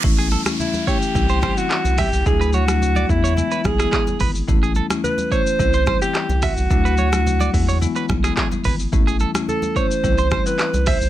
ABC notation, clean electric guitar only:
X:1
M:4/4
L:1/16
Q:1/4=108
K:A
V:1 name="Clean electric guitar"
z G A z3 c z2 =c c z3 e z | z B c z2 d z c z B z G G z B z | z G A z3 c z2 =c c z3 e z | z B c z2 d z c z B z G G z B z |
z G A z3 c z2 =c c z3 e z |]